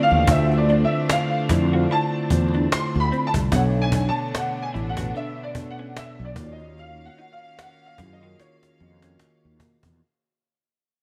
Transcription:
Already playing: tine electric piano D3 A3 E4 F4 B4 C5, string section D3 A3 C4 D4
0.03 grand piano F5
0.11 fretless electric bass D#2, cajon slap
0.27 fretless electric bass D2, tine electric piano D3 A3 D4 F4, cajon bass
0.31 tine electric piano C5, grand piano E5
0.52 cajon slap
0.58 grand piano D5
0.69 clean electric guitar D4, cajon slap
0.85 grand piano E5
1.10 grand piano F5, muted clean electric guitar stroke, cajon slap
1.49 fretless electric bass F2, tine electric piano D3 A3 E4 F4, clean electric guitar E4, cajon bass, cajon slap
1.53 tine electric piano D5
1.72 tine electric piano D3 A3 E4 F4, clean electric guitar F#4
1.76 tine electric piano C5
1.91 clean electric guitar E4, grand piano A5, cajon slap
2.29 fretless electric bass E2, tine electric piano D3 A3 E4 F4, muted clean electric guitar stroke, cajon bass
2.34 tine electric piano C5
2.54 clean electric guitar D4, cajon slap
2.72 grand piano C6, muted fretless electric bass stroke, cajon slap
2.95 fretless electric bass D2, cajon slap
3.00 grand piano B5
3.12 clean electric guitar C4, cajon slap
3.27 grand piano A5
3.34 fretless electric bass C2, cajon bass, cajon slap
3.51 fretless electric bass B1, tine electric piano B2 B3 D4 A4, string section D3 A3 B3 D4, grand piano F#5, cajon bass
3.56 tine electric piano C#5
3.76 cajon slap
3.82 grand piano G#5
3.92 clean electric guitar D4, cajon bass
4.09 grand piano A5
4.34 grand piano F#5, muted clean electric guitar stroke, cajon slap
4.63 grand piano G#5
4.74 fretless electric bass A1, clean electric guitar E4, cajon slap
4.89 grand piano F#5
4.97 tine electric piano B2 B3 D4 A4, clean electric guitar F#4, cajon bass
5.01 tine electric piano B4
5.15 clean electric guitar D4, grand piano E5, cajon slap
5.43 grand piano D5
5.55 tine electric piano B2 B3 D4 A4, muted clean electric guitar stroke, cajon bass
5.59 tine electric piano D5
5.70 grand piano F#5
5.79 clean electric guitar C#4, cajon slap
5.97 grand piano E5, muted fretless electric bass stroke, cajon slap
6.19 fretless electric bass B1, cajon slap
6.25 grand piano D5
6.36 fretless electric bass D#2, string section D#3 A#3 C#4 F5, tine electric piano D#3 A#3 F4 F#4, clean electric guitar A#3, cajon bass
6.40 tine electric piano C#5
6.52 grand piano D#5
6.60 cajon slap
6.78 grand piano F5, cajon slap
7.01 cajon slap
7.05 grand piano F#5
7.18 clean electric guitar D#4, cajon slap
7.32 grand piano F5
7.59 grand piano F#5, muted clean electric guitar stroke, cajon slap
7.86 grand piano F5
7.98 fretless electric bass F#2, tine electric piano D#3 A#3 F4 F#4 G#4, clean electric guitar E4, cajon bass, cajon slap
8.13 grand piano D#5
8.21 tine electric piano D#3 A#3 F4 F#4, clean electric guitar F#4
8.25 tine electric piano A#4
8.40 clean electric guitar D#4, grand piano C#5, cajon slap
8.63 cajon slap
8.79 fretless electric bass F2, tine electric piano D#3 A#3 F4 F#4, muted clean electric guitar stroke, cajon slap
8.83 tine electric piano D#5
9.02 clean electric guitar C#4, cajon slap
9.19 cajon slap
9.45 fretless electric bass D#2
9.60 clean electric guitar A#3, cajon bass
9.83 fretless electric bass E2, cajon bass

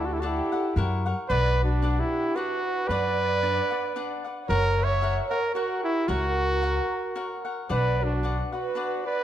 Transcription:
Already playing: upright bass D2, cavaquinho D4 A4 D5 F#5
0.05 trumpet F#4, violin section A4
0.12 trumpet E4, violin section G4
0.20 cavaquinho D4 A4 D5, trumpet F#4, violin section A4
0.24 trumpet E4, cavaquinho F#5
0.28 violin section G4
0.52 cavaquinho A4 D5 F#5
0.76 upright bass F#2, cavaquinho E4 A#4 C#5 F#5
1.06 cavaquinho A#4 C#5 F#5
1.29 upright bass B1, cavaquinho D4 B4 D5 F#5, trumpet B4, violin section D5
1.64 trumpet D4, violin section F#4
1.82 cavaquinho D4 B4 D5 F#5
2.00 trumpet E4, violin section G4
2.36 cavaquinho D4 B4 D5 F#5, trumpet F#4, violin section B4
2.88 upright bass F#2, cavaquinho D4 B4 D5 F#5, trumpet B4, violin section D5
3.43 cavaquinho D4 B4 D5 F#5
3.71 cavaquinho B4 D5 F#5
3.96 cavaquinho D4 B4 D5 F#5
4.24 cavaquinho B4 D5 F#5
4.48 upright bass F#1, cavaquinho F#4 A#4 C#5 F#5, trumpet A#4, violin section C#5
4.84 trumpet C#5, violin section E5
5.02 cavaquinho F#4 A#4 C#5 F#5
5.30 trumpet A#4, cavaquinho A#4 C#5 F#5, violin section C#5
5.54 cavaquinho F#4 A#4 C#5 F#5, trumpet F#4, violin section A#4
5.84 trumpet E4, violin section G4
6.08 upright bass C#2, cavaquinho F#4 A#4 C#5 F#5, trumpet F#4, violin section A#4
6.62 cavaquinho F#4 A#4 C#5 F#5
7.16 cavaquinho F#4 A#4 C#5 F#5
7.45 cavaquinho A#4 C#5 F#5
7.69 upright bass B1, cavaquinho D4 B4 D5 F#5, trumpet B4, violin section D5
8.04 trumpet D4, violin section F#4
8.23 cavaquinho D4 B4 D5 F#5
8.52 trumpet F#4, violin section B4, cavaquinho B4 D5 F#5
8.75 cavaquinho D4 B4 D5 F#5
9.06 trumpet B4, violin section D5

